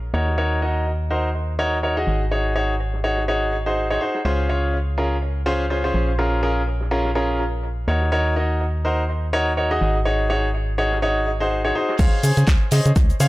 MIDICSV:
0, 0, Header, 1, 4, 480
1, 0, Start_track
1, 0, Tempo, 483871
1, 376, Time_signature, 4, 2, 24, 8
1, 13175, End_track
2, 0, Start_track
2, 0, Title_t, "Grand piano"
2, 0, Program_c, 0, 0
2, 136, Note_on_c, 0, 70, 66
2, 136, Note_on_c, 0, 73, 80
2, 137, Note_on_c, 0, 63, 71
2, 137, Note_on_c, 0, 66, 67
2, 351, Note_off_c, 0, 70, 0
2, 351, Note_off_c, 0, 73, 0
2, 352, Note_off_c, 0, 63, 0
2, 352, Note_off_c, 0, 66, 0
2, 375, Note_on_c, 0, 73, 99
2, 376, Note_on_c, 0, 63, 88
2, 376, Note_on_c, 0, 66, 82
2, 376, Note_on_c, 0, 70, 84
2, 584, Note_off_c, 0, 73, 0
2, 585, Note_off_c, 0, 63, 0
2, 585, Note_off_c, 0, 66, 0
2, 585, Note_off_c, 0, 70, 0
2, 616, Note_on_c, 0, 63, 70
2, 616, Note_on_c, 0, 70, 63
2, 616, Note_on_c, 0, 75, 77
2, 617, Note_on_c, 0, 66, 66
2, 882, Note_off_c, 0, 63, 0
2, 883, Note_off_c, 0, 66, 0
2, 883, Note_off_c, 0, 70, 0
2, 883, Note_off_c, 0, 75, 0
2, 1095, Note_on_c, 0, 63, 77
2, 1095, Note_on_c, 0, 72, 87
2, 1096, Note_on_c, 0, 66, 71
2, 1096, Note_on_c, 0, 70, 70
2, 1271, Note_off_c, 0, 63, 0
2, 1271, Note_off_c, 0, 66, 0
2, 1271, Note_off_c, 0, 70, 0
2, 1271, Note_off_c, 0, 72, 0
2, 1575, Note_on_c, 0, 63, 98
2, 1575, Note_on_c, 0, 66, 88
2, 1575, Note_on_c, 0, 70, 89
2, 1576, Note_on_c, 0, 73, 109
2, 1750, Note_off_c, 0, 66, 0
2, 1751, Note_off_c, 0, 63, 0
2, 1751, Note_off_c, 0, 70, 0
2, 1751, Note_off_c, 0, 73, 0
2, 1817, Note_on_c, 0, 63, 70
2, 1817, Note_on_c, 0, 73, 79
2, 1818, Note_on_c, 0, 66, 65
2, 1818, Note_on_c, 0, 70, 67
2, 1933, Note_off_c, 0, 63, 0
2, 1933, Note_off_c, 0, 66, 0
2, 1933, Note_off_c, 0, 70, 0
2, 1933, Note_off_c, 0, 73, 0
2, 1953, Note_on_c, 0, 63, 78
2, 1954, Note_on_c, 0, 66, 72
2, 1954, Note_on_c, 0, 68, 75
2, 1954, Note_on_c, 0, 75, 88
2, 2213, Note_off_c, 0, 63, 0
2, 2213, Note_off_c, 0, 66, 0
2, 2213, Note_off_c, 0, 68, 0
2, 2213, Note_off_c, 0, 75, 0
2, 2296, Note_on_c, 0, 63, 76
2, 2296, Note_on_c, 0, 66, 71
2, 2296, Note_on_c, 0, 68, 69
2, 2297, Note_on_c, 0, 73, 84
2, 2505, Note_off_c, 0, 63, 0
2, 2505, Note_off_c, 0, 66, 0
2, 2505, Note_off_c, 0, 68, 0
2, 2505, Note_off_c, 0, 73, 0
2, 2535, Note_on_c, 0, 66, 73
2, 2535, Note_on_c, 0, 68, 73
2, 2535, Note_on_c, 0, 73, 86
2, 2536, Note_on_c, 0, 63, 80
2, 2710, Note_off_c, 0, 68, 0
2, 2710, Note_off_c, 0, 73, 0
2, 2711, Note_off_c, 0, 63, 0
2, 2711, Note_off_c, 0, 66, 0
2, 3015, Note_on_c, 0, 66, 75
2, 3015, Note_on_c, 0, 73, 88
2, 3016, Note_on_c, 0, 63, 80
2, 3016, Note_on_c, 0, 68, 73
2, 3190, Note_off_c, 0, 66, 0
2, 3190, Note_off_c, 0, 73, 0
2, 3191, Note_off_c, 0, 63, 0
2, 3191, Note_off_c, 0, 68, 0
2, 3255, Note_on_c, 0, 73, 89
2, 3256, Note_on_c, 0, 63, 79
2, 3256, Note_on_c, 0, 66, 74
2, 3256, Note_on_c, 0, 68, 74
2, 3522, Note_off_c, 0, 63, 0
2, 3522, Note_off_c, 0, 66, 0
2, 3522, Note_off_c, 0, 68, 0
2, 3522, Note_off_c, 0, 73, 0
2, 3633, Note_on_c, 0, 63, 77
2, 3633, Note_on_c, 0, 66, 69
2, 3633, Note_on_c, 0, 68, 70
2, 3633, Note_on_c, 0, 72, 84
2, 3832, Note_off_c, 0, 63, 0
2, 3832, Note_off_c, 0, 66, 0
2, 3832, Note_off_c, 0, 68, 0
2, 3832, Note_off_c, 0, 72, 0
2, 3874, Note_on_c, 0, 63, 73
2, 3874, Note_on_c, 0, 66, 67
2, 3874, Note_on_c, 0, 68, 66
2, 3874, Note_on_c, 0, 73, 80
2, 3961, Note_off_c, 0, 63, 0
2, 3961, Note_off_c, 0, 66, 0
2, 3961, Note_off_c, 0, 68, 0
2, 3961, Note_off_c, 0, 73, 0
2, 3977, Note_on_c, 0, 63, 72
2, 3977, Note_on_c, 0, 66, 65
2, 3977, Note_on_c, 0, 68, 66
2, 3977, Note_on_c, 0, 72, 81
2, 4151, Note_off_c, 0, 63, 0
2, 4151, Note_off_c, 0, 66, 0
2, 4151, Note_off_c, 0, 68, 0
2, 4151, Note_off_c, 0, 72, 0
2, 4216, Note_on_c, 0, 68, 80
2, 4217, Note_on_c, 0, 61, 86
2, 4217, Note_on_c, 0, 65, 79
2, 4217, Note_on_c, 0, 72, 98
2, 4425, Note_off_c, 0, 61, 0
2, 4425, Note_off_c, 0, 65, 0
2, 4425, Note_off_c, 0, 68, 0
2, 4425, Note_off_c, 0, 72, 0
2, 4457, Note_on_c, 0, 61, 69
2, 4457, Note_on_c, 0, 65, 65
2, 4458, Note_on_c, 0, 68, 64
2, 4458, Note_on_c, 0, 73, 79
2, 4723, Note_off_c, 0, 61, 0
2, 4723, Note_off_c, 0, 65, 0
2, 4723, Note_off_c, 0, 68, 0
2, 4723, Note_off_c, 0, 73, 0
2, 4937, Note_on_c, 0, 61, 76
2, 4937, Note_on_c, 0, 65, 70
2, 4937, Note_on_c, 0, 68, 70
2, 4937, Note_on_c, 0, 70, 83
2, 5111, Note_off_c, 0, 61, 0
2, 5111, Note_off_c, 0, 65, 0
2, 5111, Note_off_c, 0, 68, 0
2, 5111, Note_off_c, 0, 70, 0
2, 5416, Note_on_c, 0, 61, 98
2, 5416, Note_on_c, 0, 65, 89
2, 5416, Note_on_c, 0, 68, 90
2, 5416, Note_on_c, 0, 72, 106
2, 5591, Note_off_c, 0, 61, 0
2, 5591, Note_off_c, 0, 65, 0
2, 5591, Note_off_c, 0, 68, 0
2, 5591, Note_off_c, 0, 72, 0
2, 5657, Note_on_c, 0, 61, 72
2, 5657, Note_on_c, 0, 65, 64
2, 5657, Note_on_c, 0, 68, 63
2, 5657, Note_on_c, 0, 72, 81
2, 5772, Note_off_c, 0, 61, 0
2, 5772, Note_off_c, 0, 65, 0
2, 5772, Note_off_c, 0, 68, 0
2, 5772, Note_off_c, 0, 72, 0
2, 5793, Note_on_c, 0, 61, 78
2, 5793, Note_on_c, 0, 68, 72
2, 5793, Note_on_c, 0, 72, 88
2, 5794, Note_on_c, 0, 65, 71
2, 6053, Note_off_c, 0, 61, 0
2, 6053, Note_off_c, 0, 65, 0
2, 6053, Note_off_c, 0, 68, 0
2, 6053, Note_off_c, 0, 72, 0
2, 6136, Note_on_c, 0, 65, 71
2, 6137, Note_on_c, 0, 61, 77
2, 6137, Note_on_c, 0, 68, 69
2, 6137, Note_on_c, 0, 70, 88
2, 6345, Note_off_c, 0, 61, 0
2, 6345, Note_off_c, 0, 65, 0
2, 6345, Note_off_c, 0, 68, 0
2, 6345, Note_off_c, 0, 70, 0
2, 6376, Note_on_c, 0, 61, 79
2, 6376, Note_on_c, 0, 65, 74
2, 6376, Note_on_c, 0, 68, 73
2, 6376, Note_on_c, 0, 70, 90
2, 6551, Note_off_c, 0, 61, 0
2, 6551, Note_off_c, 0, 65, 0
2, 6551, Note_off_c, 0, 68, 0
2, 6551, Note_off_c, 0, 70, 0
2, 6856, Note_on_c, 0, 70, 88
2, 6857, Note_on_c, 0, 61, 84
2, 6857, Note_on_c, 0, 65, 75
2, 6857, Note_on_c, 0, 68, 76
2, 7031, Note_off_c, 0, 61, 0
2, 7031, Note_off_c, 0, 65, 0
2, 7031, Note_off_c, 0, 68, 0
2, 7031, Note_off_c, 0, 70, 0
2, 7096, Note_on_c, 0, 61, 85
2, 7096, Note_on_c, 0, 65, 75
2, 7096, Note_on_c, 0, 68, 76
2, 7097, Note_on_c, 0, 70, 91
2, 7362, Note_off_c, 0, 65, 0
2, 7362, Note_off_c, 0, 68, 0
2, 7363, Note_off_c, 0, 61, 0
2, 7363, Note_off_c, 0, 70, 0
2, 7815, Note_on_c, 0, 63, 73
2, 7815, Note_on_c, 0, 66, 66
2, 7815, Note_on_c, 0, 70, 66
2, 7815, Note_on_c, 0, 73, 79
2, 8030, Note_off_c, 0, 63, 0
2, 8030, Note_off_c, 0, 70, 0
2, 8031, Note_off_c, 0, 66, 0
2, 8031, Note_off_c, 0, 73, 0
2, 8055, Note_on_c, 0, 63, 91
2, 8055, Note_on_c, 0, 66, 81
2, 8055, Note_on_c, 0, 70, 79
2, 8055, Note_on_c, 0, 73, 99
2, 8264, Note_off_c, 0, 63, 0
2, 8264, Note_off_c, 0, 66, 0
2, 8264, Note_off_c, 0, 70, 0
2, 8264, Note_off_c, 0, 73, 0
2, 8295, Note_on_c, 0, 70, 63
2, 8296, Note_on_c, 0, 63, 71
2, 8296, Note_on_c, 0, 66, 65
2, 8296, Note_on_c, 0, 75, 78
2, 8562, Note_off_c, 0, 63, 0
2, 8562, Note_off_c, 0, 66, 0
2, 8562, Note_off_c, 0, 70, 0
2, 8563, Note_off_c, 0, 75, 0
2, 8775, Note_on_c, 0, 66, 70
2, 8776, Note_on_c, 0, 63, 76
2, 8776, Note_on_c, 0, 70, 71
2, 8776, Note_on_c, 0, 72, 87
2, 8951, Note_off_c, 0, 63, 0
2, 8951, Note_off_c, 0, 66, 0
2, 8951, Note_off_c, 0, 70, 0
2, 8951, Note_off_c, 0, 72, 0
2, 9257, Note_on_c, 0, 63, 98
2, 9257, Note_on_c, 0, 66, 89
2, 9257, Note_on_c, 0, 70, 87
2, 9257, Note_on_c, 0, 73, 108
2, 9431, Note_off_c, 0, 63, 0
2, 9431, Note_off_c, 0, 66, 0
2, 9431, Note_off_c, 0, 70, 0
2, 9431, Note_off_c, 0, 73, 0
2, 9495, Note_on_c, 0, 63, 72
2, 9495, Note_on_c, 0, 66, 68
2, 9495, Note_on_c, 0, 70, 66
2, 9495, Note_on_c, 0, 73, 81
2, 9611, Note_off_c, 0, 63, 0
2, 9611, Note_off_c, 0, 66, 0
2, 9611, Note_off_c, 0, 70, 0
2, 9611, Note_off_c, 0, 73, 0
2, 9631, Note_on_c, 0, 63, 82
2, 9631, Note_on_c, 0, 66, 75
2, 9631, Note_on_c, 0, 75, 89
2, 9632, Note_on_c, 0, 68, 74
2, 9892, Note_off_c, 0, 63, 0
2, 9892, Note_off_c, 0, 66, 0
2, 9892, Note_off_c, 0, 68, 0
2, 9892, Note_off_c, 0, 75, 0
2, 9974, Note_on_c, 0, 66, 71
2, 9974, Note_on_c, 0, 68, 70
2, 9974, Note_on_c, 0, 73, 87
2, 9975, Note_on_c, 0, 63, 80
2, 10184, Note_off_c, 0, 63, 0
2, 10184, Note_off_c, 0, 66, 0
2, 10184, Note_off_c, 0, 68, 0
2, 10184, Note_off_c, 0, 73, 0
2, 10215, Note_on_c, 0, 63, 79
2, 10215, Note_on_c, 0, 68, 75
2, 10215, Note_on_c, 0, 73, 91
2, 10216, Note_on_c, 0, 66, 76
2, 10390, Note_off_c, 0, 68, 0
2, 10391, Note_off_c, 0, 63, 0
2, 10391, Note_off_c, 0, 66, 0
2, 10391, Note_off_c, 0, 73, 0
2, 10695, Note_on_c, 0, 63, 81
2, 10695, Note_on_c, 0, 66, 77
2, 10695, Note_on_c, 0, 73, 91
2, 10696, Note_on_c, 0, 68, 78
2, 10870, Note_off_c, 0, 63, 0
2, 10870, Note_off_c, 0, 73, 0
2, 10871, Note_off_c, 0, 66, 0
2, 10871, Note_off_c, 0, 68, 0
2, 10935, Note_on_c, 0, 63, 87
2, 10935, Note_on_c, 0, 66, 78
2, 10935, Note_on_c, 0, 68, 76
2, 10935, Note_on_c, 0, 73, 91
2, 11202, Note_off_c, 0, 63, 0
2, 11202, Note_off_c, 0, 66, 0
2, 11202, Note_off_c, 0, 68, 0
2, 11202, Note_off_c, 0, 73, 0
2, 11313, Note_on_c, 0, 63, 76
2, 11313, Note_on_c, 0, 66, 72
2, 11313, Note_on_c, 0, 68, 69
2, 11313, Note_on_c, 0, 72, 89
2, 11512, Note_off_c, 0, 63, 0
2, 11512, Note_off_c, 0, 66, 0
2, 11512, Note_off_c, 0, 68, 0
2, 11512, Note_off_c, 0, 72, 0
2, 11552, Note_on_c, 0, 73, 81
2, 11553, Note_on_c, 0, 63, 73
2, 11553, Note_on_c, 0, 66, 67
2, 11553, Note_on_c, 0, 68, 67
2, 11640, Note_off_c, 0, 63, 0
2, 11640, Note_off_c, 0, 66, 0
2, 11640, Note_off_c, 0, 73, 0
2, 11641, Note_off_c, 0, 68, 0
2, 11657, Note_on_c, 0, 66, 70
2, 11657, Note_on_c, 0, 68, 68
2, 11657, Note_on_c, 0, 72, 84
2, 11658, Note_on_c, 0, 63, 73
2, 11831, Note_off_c, 0, 68, 0
2, 11831, Note_off_c, 0, 72, 0
2, 11832, Note_off_c, 0, 63, 0
2, 11832, Note_off_c, 0, 66, 0
2, 11898, Note_on_c, 0, 68, 93
2, 11898, Note_on_c, 0, 72, 85
2, 11898, Note_on_c, 0, 77, 104
2, 11899, Note_on_c, 0, 73, 87
2, 12106, Note_off_c, 0, 68, 0
2, 12106, Note_off_c, 0, 72, 0
2, 12106, Note_off_c, 0, 73, 0
2, 12106, Note_off_c, 0, 77, 0
2, 12137, Note_on_c, 0, 73, 68
2, 12138, Note_on_c, 0, 68, 76
2, 12138, Note_on_c, 0, 72, 68
2, 12138, Note_on_c, 0, 80, 79
2, 12403, Note_off_c, 0, 68, 0
2, 12403, Note_off_c, 0, 72, 0
2, 12403, Note_off_c, 0, 73, 0
2, 12403, Note_off_c, 0, 80, 0
2, 12618, Note_on_c, 0, 68, 83
2, 12618, Note_on_c, 0, 73, 74
2, 12619, Note_on_c, 0, 72, 73
2, 12619, Note_on_c, 0, 75, 91
2, 12792, Note_off_c, 0, 68, 0
2, 12792, Note_off_c, 0, 72, 0
2, 12792, Note_off_c, 0, 73, 0
2, 12792, Note_off_c, 0, 75, 0
2, 13097, Note_on_c, 0, 68, 104
2, 13097, Note_on_c, 0, 72, 93
2, 13097, Note_on_c, 0, 73, 93
2, 13097, Note_on_c, 0, 77, 111
2, 13175, Note_off_c, 0, 68, 0
2, 13175, Note_off_c, 0, 72, 0
2, 13175, Note_off_c, 0, 73, 0
2, 13175, Note_off_c, 0, 77, 0
2, 13175, End_track
3, 0, Start_track
3, 0, Title_t, "FM bass"
3, 0, Program_c, 1, 39
3, 0, Note_on_c, 1, 34, 85
3, 115, Note_off_c, 1, 34, 0
3, 135, Note_on_c, 1, 39, 89
3, 2035, Note_off_c, 1, 39, 0
3, 2055, Note_on_c, 1, 32, 86
3, 3955, Note_off_c, 1, 32, 0
3, 4216, Note_on_c, 1, 37, 90
3, 5875, Note_off_c, 1, 37, 0
3, 5895, Note_on_c, 1, 34, 86
3, 7795, Note_off_c, 1, 34, 0
3, 7814, Note_on_c, 1, 39, 90
3, 9714, Note_off_c, 1, 39, 0
3, 9735, Note_on_c, 1, 32, 89
3, 11635, Note_off_c, 1, 32, 0
3, 11896, Note_on_c, 1, 37, 105
3, 11981, Note_off_c, 1, 37, 0
3, 12136, Note_on_c, 1, 49, 83
3, 12221, Note_off_c, 1, 49, 0
3, 12273, Note_on_c, 1, 49, 94
3, 12337, Note_off_c, 1, 49, 0
3, 12376, Note_on_c, 1, 37, 81
3, 12461, Note_off_c, 1, 37, 0
3, 12617, Note_on_c, 1, 49, 99
3, 12701, Note_off_c, 1, 49, 0
3, 12753, Note_on_c, 1, 49, 95
3, 12817, Note_off_c, 1, 49, 0
3, 12856, Note_on_c, 1, 37, 80
3, 13018, Note_off_c, 1, 37, 0
3, 13096, Note_on_c, 1, 49, 89
3, 13175, Note_off_c, 1, 49, 0
3, 13175, End_track
4, 0, Start_track
4, 0, Title_t, "Drums"
4, 276, Note_on_c, 9, 38, 51
4, 375, Note_off_c, 9, 38, 0
4, 859, Note_on_c, 9, 42, 79
4, 958, Note_off_c, 9, 42, 0
4, 1338, Note_on_c, 9, 42, 81
4, 1437, Note_off_c, 9, 42, 0
4, 1810, Note_on_c, 9, 42, 78
4, 1909, Note_off_c, 9, 42, 0
4, 2062, Note_on_c, 9, 42, 66
4, 2161, Note_off_c, 9, 42, 0
4, 2300, Note_on_c, 9, 42, 88
4, 2400, Note_off_c, 9, 42, 0
4, 2773, Note_on_c, 9, 42, 78
4, 2872, Note_off_c, 9, 42, 0
4, 2913, Note_on_c, 9, 38, 43
4, 3012, Note_off_c, 9, 38, 0
4, 3150, Note_on_c, 9, 38, 51
4, 3249, Note_off_c, 9, 38, 0
4, 3499, Note_on_c, 9, 42, 64
4, 3598, Note_off_c, 9, 42, 0
4, 3729, Note_on_c, 9, 42, 79
4, 3828, Note_off_c, 9, 42, 0
4, 4112, Note_on_c, 9, 38, 49
4, 4211, Note_off_c, 9, 38, 0
4, 4692, Note_on_c, 9, 42, 80
4, 4791, Note_off_c, 9, 42, 0
4, 5176, Note_on_c, 9, 42, 74
4, 5276, Note_off_c, 9, 42, 0
4, 5408, Note_on_c, 9, 42, 71
4, 5507, Note_off_c, 9, 42, 0
4, 5650, Note_on_c, 9, 42, 86
4, 5749, Note_off_c, 9, 42, 0
4, 6615, Note_on_c, 9, 42, 89
4, 6715, Note_off_c, 9, 42, 0
4, 6753, Note_on_c, 9, 38, 46
4, 6852, Note_off_c, 9, 38, 0
4, 6992, Note_on_c, 9, 38, 56
4, 7091, Note_off_c, 9, 38, 0
4, 7099, Note_on_c, 9, 42, 81
4, 7198, Note_off_c, 9, 42, 0
4, 7328, Note_on_c, 9, 42, 68
4, 7427, Note_off_c, 9, 42, 0
4, 7570, Note_on_c, 9, 42, 85
4, 7669, Note_off_c, 9, 42, 0
4, 7949, Note_on_c, 9, 38, 52
4, 8048, Note_off_c, 9, 38, 0
4, 8436, Note_on_c, 9, 42, 41
4, 8535, Note_off_c, 9, 42, 0
4, 8538, Note_on_c, 9, 42, 90
4, 8637, Note_off_c, 9, 42, 0
4, 9018, Note_on_c, 9, 42, 88
4, 9117, Note_off_c, 9, 42, 0
4, 9487, Note_on_c, 9, 42, 81
4, 9586, Note_off_c, 9, 42, 0
4, 9730, Note_on_c, 9, 42, 67
4, 9829, Note_off_c, 9, 42, 0
4, 9980, Note_on_c, 9, 42, 76
4, 10079, Note_off_c, 9, 42, 0
4, 10217, Note_on_c, 9, 38, 101
4, 10316, Note_off_c, 9, 38, 0
4, 10462, Note_on_c, 9, 42, 53
4, 10561, Note_off_c, 9, 42, 0
4, 10695, Note_on_c, 9, 42, 69
4, 10795, Note_off_c, 9, 42, 0
4, 10832, Note_on_c, 9, 38, 57
4, 10932, Note_off_c, 9, 38, 0
4, 10936, Note_on_c, 9, 42, 89
4, 11036, Note_off_c, 9, 42, 0
4, 11172, Note_on_c, 9, 42, 62
4, 11272, Note_off_c, 9, 42, 0
4, 11408, Note_on_c, 9, 42, 81
4, 11507, Note_off_c, 9, 42, 0
4, 11662, Note_on_c, 9, 42, 69
4, 11761, Note_off_c, 9, 42, 0
4, 11794, Note_on_c, 9, 38, 51
4, 11893, Note_off_c, 9, 38, 0
4, 11896, Note_on_c, 9, 36, 119
4, 11896, Note_on_c, 9, 42, 85
4, 11896, Note_on_c, 9, 49, 106
4, 11898, Note_on_c, 9, 82, 45
4, 11995, Note_off_c, 9, 36, 0
4, 11996, Note_off_c, 9, 42, 0
4, 11996, Note_off_c, 9, 49, 0
4, 11997, Note_off_c, 9, 82, 0
4, 12136, Note_on_c, 9, 46, 106
4, 12137, Note_on_c, 9, 42, 71
4, 12137, Note_on_c, 9, 82, 78
4, 12235, Note_off_c, 9, 46, 0
4, 12236, Note_off_c, 9, 42, 0
4, 12236, Note_off_c, 9, 82, 0
4, 12273, Note_on_c, 9, 42, 58
4, 12274, Note_off_c, 9, 42, 0
4, 12274, Note_on_c, 9, 42, 43
4, 12274, Note_on_c, 9, 82, 36
4, 12373, Note_off_c, 9, 42, 0
4, 12373, Note_on_c, 9, 42, 90
4, 12374, Note_off_c, 9, 82, 0
4, 12375, Note_on_c, 9, 38, 115
4, 12376, Note_on_c, 9, 36, 118
4, 12377, Note_off_c, 9, 42, 0
4, 12377, Note_on_c, 9, 42, 79
4, 12378, Note_on_c, 9, 82, 45
4, 12379, Note_on_c, 9, 39, 121
4, 12474, Note_off_c, 9, 38, 0
4, 12475, Note_off_c, 9, 36, 0
4, 12476, Note_off_c, 9, 42, 0
4, 12477, Note_off_c, 9, 82, 0
4, 12478, Note_off_c, 9, 39, 0
4, 12608, Note_on_c, 9, 42, 63
4, 12617, Note_on_c, 9, 46, 109
4, 12618, Note_on_c, 9, 82, 80
4, 12707, Note_off_c, 9, 42, 0
4, 12716, Note_off_c, 9, 46, 0
4, 12717, Note_off_c, 9, 82, 0
4, 12753, Note_on_c, 9, 42, 54
4, 12754, Note_on_c, 9, 82, 33
4, 12852, Note_off_c, 9, 42, 0
4, 12853, Note_off_c, 9, 82, 0
4, 12856, Note_on_c, 9, 36, 118
4, 12856, Note_on_c, 9, 42, 83
4, 12857, Note_on_c, 9, 82, 46
4, 12862, Note_off_c, 9, 42, 0
4, 12862, Note_on_c, 9, 42, 80
4, 12955, Note_off_c, 9, 36, 0
4, 12956, Note_off_c, 9, 82, 0
4, 12961, Note_off_c, 9, 42, 0
4, 12992, Note_on_c, 9, 42, 39
4, 12994, Note_on_c, 9, 82, 32
4, 13092, Note_off_c, 9, 42, 0
4, 13093, Note_off_c, 9, 82, 0
4, 13096, Note_on_c, 9, 42, 71
4, 13096, Note_on_c, 9, 46, 109
4, 13097, Note_on_c, 9, 82, 79
4, 13175, Note_off_c, 9, 42, 0
4, 13175, Note_off_c, 9, 46, 0
4, 13175, Note_off_c, 9, 82, 0
4, 13175, End_track
0, 0, End_of_file